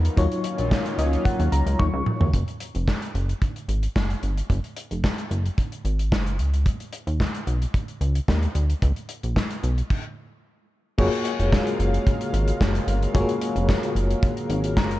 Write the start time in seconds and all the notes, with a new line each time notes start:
Already playing: C#3 F3 B3 D#4 A#4
0.05 closed hi-hat
0.16 D#2 D#3 F#3 A#3 C#4 D#4 F4 C#5, kick, closed hi-hat
0.32 closed hi-hat
0.44 closed hi-hat
0.58 A#1, closed hi-hat
0.71 kick, snare, clap
0.86 closed hi-hat
0.98 C#2 D#5, closed hi-hat
1.13 closed hi-hat
1.25 F#5, kick, closed hi-hat
1.40 D#2, closed hi-hat
1.52 C#2 A#5, closed hi-hat
1.66 C#2, closed hi-hat
1.79 D#2 C#6, kick, high tom
1.93 C#2
2.06 mid tom
2.21 D#2, floor tom
2.33 F#1, kick, closed hi-hat
2.48 closed hi-hat
2.60 closed hi-hat
2.75 F1, closed hi-hat
2.88 kick, snare, clap
3.02 closed hi-hat
3.14 F#1, closed hi-hat
3.29 closed hi-hat
3.42 kick, closed hi-hat
3.56 closed hi-hat
3.68 G#1, closed hi-hat
3.83 closed hi-hat
3.96 F#1, kick, snare, clap
4.10 closed hi-hat
4.23 G1, closed hi-hat
4.38 closed hi-hat
4.50 F#1, kick, closed hi-hat
4.64 closed hi-hat
4.76 closed hi-hat
4.91 F1, closed hi-hat
5.04 kick, snare, clap
5.18 closed hi-hat
5.31 F#1, closed hi-hat
5.46 closed hi-hat
5.58 kick, closed hi-hat
5.72 closed hi-hat
5.85 G#1, closed hi-hat
5.99 closed hi-hat
6.12 F#1, kick, snare, clap
6.26 closed hi-hat
6.39 C#2, closed hi-hat
6.54 closed hi-hat
6.66 kick, closed hi-hat
6.80 closed hi-hat
6.93 closed hi-hat
7.07 D#2, closed hi-hat
7.20 kick, snare, clap
7.34 closed hi-hat
7.47 B1, closed hi-hat
7.62 closed hi-hat
7.74 kick, closed hi-hat
7.88 closed hi-hat
8.01 C#2, closed hi-hat
8.15 closed hi-hat
8.28 D#2, kick, snare, clap
8.42 closed hi-hat
8.55 D2, closed hi-hat
8.70 closed hi-hat
8.82 C#2, kick, closed hi-hat
8.96 closed hi-hat
9.09 closed hi-hat
9.23 A#1, closed hi-hat
9.36 kick, snare, clap
9.51 closed hi-hat
9.63 B1, closed hi-hat
9.78 closed hi-hat
9.90 kick, crash
10.98 F#1 C#3 F#3 G#3 A#3 F4 F#4 G#4 A#4 C#5 F5, kick, crash
11.13 closed hi-hat
11.25 closed hi-hat
11.40 F1, closed hi-hat
11.53 kick, snare, clap
11.67 closed hi-hat
11.79 F#1, closed hi-hat
11.94 closed hi-hat
12.07 kick, closed hi-hat
12.21 closed hi-hat
12.33 G#1, closed hi-hat
12.48 closed hi-hat
12.61 F#1, kick, snare, clap
12.75 closed hi-hat
12.87 G1, closed hi-hat
13.03 closed hi-hat
13.14 F#1 G#3 F4 F#4 G#4 C#5, kick, closed hi-hat
13.20 A#3
13.29 closed hi-hat
13.41 closed hi-hat
13.56 F1, closed hi-hat
13.69 kick, snare, clap
13.83 closed hi-hat
13.95 F#1, closed hi-hat
14.11 closed hi-hat
14.23 kick, closed hi-hat
14.37 closed hi-hat
14.49 G#1, closed hi-hat
14.64 closed hi-hat
14.77 F#1 A#5, kick, snare, clap
14.91 closed hi-hat